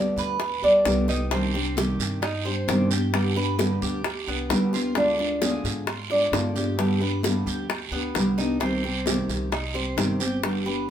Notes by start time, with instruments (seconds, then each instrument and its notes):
Already playing: upright bass D2, nylon-string guitar D3 G3 B3 G4, cuban tres D5
0.16 upright bass D2, cuban tres B4, high bongo, high conga, short guiro
0.40 muted nylon-string guitar stroke, high bongo, high conga, long guiro
0.62 upright bass D2, nylon-string guitar G3 B3 G4, cuban tres D4, high conga
0.85 upright bass C2, nylon-string guitar D3 G3 B3 G4, high bongo, low bongo, high conga, short guiro
1.08 nylon-string guitar G3 B3 G4, cuban tres D#4, high bongo, high conga, short guiro
1.31 nylon-string guitar C3 D#3 G3 D4 G4, cuban tres C4, high bongo, high conga, long guiro
1.54 nylon-string guitar G3 D4 G4, high bongo
1.77 nylon-string guitar C3 D#3 G3 D4 G4, cuban tres G4, high bongo, high conga, short guiro
1.99 upright bass G2, high bongo, high conga, short guiro
2.22 cuban tres D#4, muted nylon-string guitar stroke, high bongo, high conga, long guiro
2.45 nylon-string guitar G3 D4 G4, cuban tres C5, high bongo, high conga
2.68 upright bass G2, nylon-string guitar C3 D#3 G3 D4 G4, high bongo, low bongo, high conga, short guiro
2.90 nylon-string guitar G3 D4 G4, cuban tres G4, high conga, short guiro
3.13 nylon-string guitar D3 G3 B3 D4 G4, high bongo, long guiro
3.35 nylon-string guitar B3 D4 G4, cuban tres B4, high bongo, high conga
3.58 nylon-string guitar D3 G3 B3 D4 G4, high bongo, high conga, short guiro
3.82 upright bass D2, cuban tres G4, high bongo, high conga, short guiro
4.04 muted nylon-string guitar stroke, high bongo, high conga, long guiro
4.27 upright bass C2, cuban tres B3, nylon-string guitar B3 D4 G4, high conga
4.49 upright bass D2, nylon-string guitar D3 G3 B3 D4 G4, high bongo, low bongo, high conga, short guiro
4.73 nylon-string guitar B3 D4 G4, cuban tres F4, high bongo, high conga, short guiro
4.95 nylon-string guitar D3 G#3 D4 F4, cuban tres D4, high bongo, long guiro
5.18 nylon-string guitar G#3 D4 F4, high bongo, high conga
5.41 nylon-string guitar D3 G#3 D4 F4, cuban tres G#4, high bongo, high conga, short guiro
5.64 upright bass G#2, high bongo, high conga, short guiro
5.87 cuban tres F4, muted nylon-string guitar stroke, high bongo, high conga, long guiro
6.10 nylon-string guitar G#3 D4 F4, cuban tres D5, high bongo, high conga
6.32 upright bass G2, nylon-string guitar D3 G#3 D4 F4, high bongo, low bongo, high conga, short guiro
6.54 nylon-string guitar G#3 D4 F4, cuban tres G4, high conga, short guiro
6.77 nylon-string guitar D3 G3 B3 D4 G4, high bongo, long guiro
7.00 nylon-string guitar B3 D4 G4, cuban tres B4, high bongo, high conga
7.23 nylon-string guitar D3 G3 B3 D4 G4, high bongo, high conga, short guiro
7.46 upright bass D2, cuban tres G4, high bongo, high conga, short guiro
7.69 muted nylon-string guitar stroke, high bongo, high conga, long guiro
7.91 upright bass D2, cuban tres B3, nylon-string guitar B3 D4 G4, high conga
8.14 upright bass C2, nylon-string guitar D3 G3 B3 D4 G4, high bongo, low bongo, high conga, short guiro
8.38 nylon-string guitar B3 D4 G4, cuban tres D#4, high bongo, high conga, short guiro
8.60 nylon-string guitar C3 D#3 G3 C4 G4, cuban tres C4, high bongo, long guiro
8.83 nylon-string guitar G3 C4 G4, high bongo, high conga
9.06 nylon-string guitar C3 D#3 G3 C4 G4, cuban tres G4, high bongo, high conga, short guiro
9.28 upright bass C2, high bongo, high conga, short guiro
9.52 cuban tres D#4, muted nylon-string guitar stroke, high bongo, high conga, long guiro
9.74 nylon-string guitar G3 C4 G4, cuban tres C5, high bongo, high conga
9.97 upright bass G1, nylon-string guitar C3 D#3 G3 C4 G4, high bongo, low bongo, high conga, short guiro
10.19 nylon-string guitar G3 C4 G4, cuban tres G4, high conga, short guiro
10.43 nylon-string guitar D3 G3 B3 D4 G4, high bongo, long guiro
10.66 nylon-string guitar B3 D4 G4, cuban tres B4, high bongo, high conga